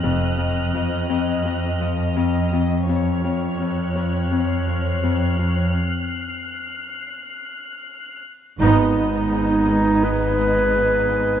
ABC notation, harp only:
X:1
M:4/4
L:1/8
Q:1/4=84
K:Ebdor
V:1 name="Harp" clef=bass
[F,,F,] F,, F,, F,, F,, F, F,, F,, | F,, F,, F,, F,, F,, F, F,, F,, | z8 | [K:G#m] G,, G,, G,, G,, G, G,, G,, G,, |]